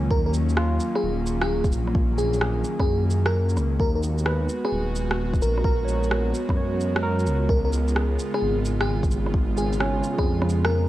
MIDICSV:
0, 0, Header, 1, 6, 480
1, 0, Start_track
1, 0, Key_signature, -6, "minor"
1, 0, Tempo, 461538
1, 114, Time_signature, 4, 2, 24, 8
1, 11321, End_track
2, 0, Start_track
2, 0, Title_t, "FM electric piano"
2, 0, Program_c, 0, 5
2, 113, Note_on_c, 0, 70, 86
2, 215, Note_off_c, 0, 70, 0
2, 271, Note_on_c, 0, 70, 74
2, 324, Note_off_c, 0, 70, 0
2, 993, Note_on_c, 0, 68, 94
2, 1241, Note_off_c, 0, 68, 0
2, 1477, Note_on_c, 0, 68, 97
2, 1723, Note_off_c, 0, 68, 0
2, 2267, Note_on_c, 0, 68, 93
2, 2527, Note_off_c, 0, 68, 0
2, 2914, Note_on_c, 0, 68, 90
2, 3162, Note_off_c, 0, 68, 0
2, 3389, Note_on_c, 0, 70, 91
2, 3712, Note_off_c, 0, 70, 0
2, 3956, Note_on_c, 0, 70, 89
2, 4057, Note_off_c, 0, 70, 0
2, 4112, Note_on_c, 0, 70, 74
2, 4164, Note_off_c, 0, 70, 0
2, 4832, Note_on_c, 0, 68, 91
2, 5081, Note_off_c, 0, 68, 0
2, 5638, Note_on_c, 0, 70, 87
2, 5860, Note_off_c, 0, 70, 0
2, 5874, Note_on_c, 0, 70, 90
2, 6562, Note_off_c, 0, 70, 0
2, 7797, Note_on_c, 0, 70, 87
2, 7898, Note_off_c, 0, 70, 0
2, 7955, Note_on_c, 0, 70, 76
2, 8006, Note_off_c, 0, 70, 0
2, 8677, Note_on_c, 0, 68, 91
2, 8924, Note_off_c, 0, 68, 0
2, 9158, Note_on_c, 0, 68, 96
2, 9404, Note_off_c, 0, 68, 0
2, 9959, Note_on_c, 0, 68, 88
2, 10212, Note_off_c, 0, 68, 0
2, 10591, Note_on_c, 0, 68, 89
2, 10841, Note_off_c, 0, 68, 0
2, 11071, Note_on_c, 0, 70, 95
2, 11321, Note_off_c, 0, 70, 0
2, 11321, End_track
3, 0, Start_track
3, 0, Title_t, "Tine electric piano"
3, 0, Program_c, 1, 4
3, 0, Control_c, 1, 64, 127
3, 0, Note_on_c, 1, 61, 68
3, 0, Note_on_c, 1, 65, 70
3, 273, Note_off_c, 1, 61, 0
3, 594, Note_off_c, 1, 65, 0
3, 594, Note_on_c, 1, 65, 82
3, 1232, Note_off_c, 1, 65, 0
3, 2514, Note_on_c, 1, 68, 72
3, 3152, Note_off_c, 1, 68, 0
3, 3969, Control_c, 1, 64, 0
3, 4136, Control_c, 1, 64, 127
3, 4431, Note_on_c, 1, 71, 72
3, 5071, Note_off_c, 1, 71, 0
3, 5872, Note_on_c, 1, 70, 72
3, 6081, Note_on_c, 1, 73, 58
3, 6511, Note_off_c, 1, 70, 0
3, 6656, Note_off_c, 1, 73, 0
3, 6832, Note_on_c, 1, 73, 60
3, 7309, Note_on_c, 1, 70, 87
3, 7471, Note_off_c, 1, 73, 0
3, 7808, Control_c, 1, 64, 0
3, 7949, Note_off_c, 1, 70, 0
3, 7980, Control_c, 1, 64, 127
3, 8274, Note_on_c, 1, 68, 54
3, 8912, Note_off_c, 1, 68, 0
3, 10196, Note_on_c, 1, 61, 79
3, 10405, Note_on_c, 1, 65, 52
3, 10537, Note_on_c, 1, 68, 52
3, 10833, Note_off_c, 1, 61, 0
3, 10978, Note_off_c, 1, 65, 0
3, 11123, Note_off_c, 1, 68, 0
3, 11321, End_track
4, 0, Start_track
4, 0, Title_t, "Analog synth pad"
4, 0, Program_c, 2, 89
4, 0, Note_on_c, 2, 51, 75
4, 0, Note_on_c, 2, 54, 85
4, 0, Note_on_c, 2, 58, 69
4, 0, Note_on_c, 2, 61, 74
4, 3909, Note_off_c, 2, 54, 0
4, 3909, Note_off_c, 2, 61, 0
4, 3911, Note_off_c, 2, 51, 0
4, 3911, Note_off_c, 2, 58, 0
4, 3945, Note_on_c, 2, 56, 79
4, 3945, Note_on_c, 2, 66, 83
4, 3947, Note_on_c, 2, 59, 68
4, 7751, Note_off_c, 2, 66, 0
4, 7796, Note_on_c, 2, 49, 78
4, 7796, Note_on_c, 2, 65, 87
4, 11321, Note_off_c, 2, 49, 0
4, 11321, Note_off_c, 2, 56, 0
4, 11321, Note_off_c, 2, 59, 0
4, 11321, Note_off_c, 2, 65, 0
4, 11321, End_track
5, 0, Start_track
5, 0, Title_t, "Detuned saw bass"
5, 0, Program_c, 3, 39
5, 110, Note_on_c, 3, 39, 105
5, 822, Note_off_c, 3, 39, 0
5, 1074, Note_on_c, 3, 27, 83
5, 1794, Note_on_c, 3, 34, 100
5, 1809, Note_off_c, 3, 27, 0
5, 2744, Note_off_c, 3, 34, 0
5, 2906, Note_on_c, 3, 42, 102
5, 3712, Note_on_c, 3, 37, 94
5, 3728, Note_off_c, 3, 42, 0
5, 3940, Note_off_c, 3, 37, 0
5, 3948, Note_on_c, 3, 39, 101
5, 4661, Note_off_c, 3, 39, 0
5, 4910, Note_on_c, 3, 27, 86
5, 5633, Note_on_c, 3, 34, 104
5, 5648, Note_off_c, 3, 27, 0
5, 6583, Note_off_c, 3, 34, 0
5, 6748, Note_on_c, 3, 42, 101
5, 7558, Note_on_c, 3, 37, 93
5, 7573, Note_off_c, 3, 42, 0
5, 7783, Note_off_c, 3, 37, 0
5, 7789, Note_on_c, 3, 37, 104
5, 8501, Note_off_c, 3, 37, 0
5, 8759, Note_on_c, 3, 32, 84
5, 9466, Note_off_c, 3, 32, 0
5, 9475, Note_on_c, 3, 32, 101
5, 10425, Note_off_c, 3, 32, 0
5, 10590, Note_on_c, 3, 41, 102
5, 11321, Note_off_c, 3, 41, 0
5, 11321, End_track
6, 0, Start_track
6, 0, Title_t, "Drums"
6, 110, Note_on_c, 9, 36, 127
6, 214, Note_off_c, 9, 36, 0
6, 350, Note_on_c, 9, 82, 59
6, 454, Note_off_c, 9, 82, 0
6, 511, Note_on_c, 9, 82, 33
6, 592, Note_on_c, 9, 37, 116
6, 615, Note_off_c, 9, 82, 0
6, 696, Note_off_c, 9, 37, 0
6, 832, Note_on_c, 9, 82, 57
6, 936, Note_off_c, 9, 82, 0
6, 992, Note_on_c, 9, 37, 61
6, 1096, Note_off_c, 9, 37, 0
6, 1315, Note_on_c, 9, 82, 56
6, 1419, Note_off_c, 9, 82, 0
6, 1471, Note_on_c, 9, 37, 109
6, 1575, Note_off_c, 9, 37, 0
6, 1708, Note_on_c, 9, 36, 114
6, 1710, Note_on_c, 9, 82, 31
6, 1790, Note_off_c, 9, 82, 0
6, 1790, Note_on_c, 9, 82, 58
6, 1812, Note_off_c, 9, 36, 0
6, 1894, Note_off_c, 9, 82, 0
6, 1950, Note_on_c, 9, 37, 36
6, 2027, Note_on_c, 9, 36, 127
6, 2054, Note_off_c, 9, 37, 0
6, 2131, Note_off_c, 9, 36, 0
6, 2271, Note_on_c, 9, 82, 57
6, 2375, Note_off_c, 9, 82, 0
6, 2429, Note_on_c, 9, 82, 32
6, 2509, Note_on_c, 9, 37, 113
6, 2533, Note_off_c, 9, 82, 0
6, 2613, Note_off_c, 9, 37, 0
6, 2750, Note_on_c, 9, 82, 58
6, 2854, Note_off_c, 9, 82, 0
6, 2907, Note_on_c, 9, 36, 111
6, 2911, Note_on_c, 9, 37, 60
6, 3011, Note_off_c, 9, 36, 0
6, 3015, Note_off_c, 9, 37, 0
6, 3229, Note_on_c, 9, 82, 55
6, 3333, Note_off_c, 9, 82, 0
6, 3388, Note_on_c, 9, 37, 110
6, 3492, Note_off_c, 9, 37, 0
6, 3631, Note_on_c, 9, 82, 32
6, 3712, Note_off_c, 9, 82, 0
6, 3712, Note_on_c, 9, 37, 37
6, 3712, Note_on_c, 9, 82, 56
6, 3816, Note_off_c, 9, 37, 0
6, 3816, Note_off_c, 9, 82, 0
6, 3948, Note_on_c, 9, 36, 116
6, 4052, Note_off_c, 9, 36, 0
6, 4190, Note_on_c, 9, 82, 53
6, 4294, Note_off_c, 9, 82, 0
6, 4349, Note_on_c, 9, 82, 31
6, 4428, Note_on_c, 9, 37, 103
6, 4453, Note_off_c, 9, 82, 0
6, 4532, Note_off_c, 9, 37, 0
6, 4671, Note_on_c, 9, 82, 59
6, 4775, Note_off_c, 9, 82, 0
6, 4833, Note_on_c, 9, 37, 59
6, 4937, Note_off_c, 9, 37, 0
6, 5153, Note_on_c, 9, 82, 52
6, 5257, Note_off_c, 9, 82, 0
6, 5313, Note_on_c, 9, 37, 105
6, 5417, Note_off_c, 9, 37, 0
6, 5548, Note_on_c, 9, 36, 106
6, 5557, Note_on_c, 9, 82, 31
6, 5635, Note_off_c, 9, 82, 0
6, 5635, Note_on_c, 9, 82, 54
6, 5652, Note_off_c, 9, 36, 0
6, 5739, Note_off_c, 9, 82, 0
6, 5799, Note_on_c, 9, 37, 35
6, 5869, Note_on_c, 9, 36, 116
6, 5903, Note_off_c, 9, 37, 0
6, 5973, Note_off_c, 9, 36, 0
6, 6118, Note_on_c, 9, 82, 54
6, 6222, Note_off_c, 9, 82, 0
6, 6276, Note_on_c, 9, 82, 31
6, 6356, Note_on_c, 9, 37, 100
6, 6380, Note_off_c, 9, 82, 0
6, 6460, Note_off_c, 9, 37, 0
6, 6598, Note_on_c, 9, 82, 58
6, 6702, Note_off_c, 9, 82, 0
6, 6749, Note_on_c, 9, 36, 100
6, 6761, Note_on_c, 9, 37, 60
6, 6853, Note_off_c, 9, 36, 0
6, 6865, Note_off_c, 9, 37, 0
6, 7079, Note_on_c, 9, 82, 53
6, 7183, Note_off_c, 9, 82, 0
6, 7238, Note_on_c, 9, 37, 102
6, 7342, Note_off_c, 9, 37, 0
6, 7479, Note_on_c, 9, 82, 29
6, 7557, Note_off_c, 9, 82, 0
6, 7557, Note_on_c, 9, 82, 57
6, 7661, Note_off_c, 9, 82, 0
6, 7791, Note_on_c, 9, 36, 118
6, 7895, Note_off_c, 9, 36, 0
6, 8037, Note_on_c, 9, 82, 56
6, 8141, Note_off_c, 9, 82, 0
6, 8197, Note_on_c, 9, 82, 31
6, 8279, Note_on_c, 9, 37, 102
6, 8301, Note_off_c, 9, 82, 0
6, 8383, Note_off_c, 9, 37, 0
6, 8519, Note_on_c, 9, 82, 57
6, 8623, Note_off_c, 9, 82, 0
6, 8676, Note_on_c, 9, 37, 65
6, 8780, Note_off_c, 9, 37, 0
6, 8999, Note_on_c, 9, 82, 56
6, 9103, Note_off_c, 9, 82, 0
6, 9159, Note_on_c, 9, 37, 102
6, 9263, Note_off_c, 9, 37, 0
6, 9392, Note_on_c, 9, 36, 105
6, 9398, Note_on_c, 9, 82, 31
6, 9476, Note_off_c, 9, 82, 0
6, 9476, Note_on_c, 9, 82, 58
6, 9496, Note_off_c, 9, 36, 0
6, 9580, Note_off_c, 9, 82, 0
6, 9635, Note_on_c, 9, 37, 39
6, 9713, Note_on_c, 9, 36, 115
6, 9739, Note_off_c, 9, 37, 0
6, 9817, Note_off_c, 9, 36, 0
6, 9957, Note_on_c, 9, 82, 61
6, 10061, Note_off_c, 9, 82, 0
6, 10118, Note_on_c, 9, 82, 33
6, 10197, Note_on_c, 9, 37, 102
6, 10222, Note_off_c, 9, 82, 0
6, 10301, Note_off_c, 9, 37, 0
6, 10438, Note_on_c, 9, 82, 59
6, 10542, Note_off_c, 9, 82, 0
6, 10591, Note_on_c, 9, 36, 103
6, 10595, Note_on_c, 9, 37, 63
6, 10695, Note_off_c, 9, 36, 0
6, 10699, Note_off_c, 9, 37, 0
6, 10835, Note_on_c, 9, 37, 66
6, 10913, Note_on_c, 9, 82, 56
6, 10939, Note_off_c, 9, 37, 0
6, 11017, Note_off_c, 9, 82, 0
6, 11072, Note_on_c, 9, 37, 103
6, 11176, Note_off_c, 9, 37, 0
6, 11321, End_track
0, 0, End_of_file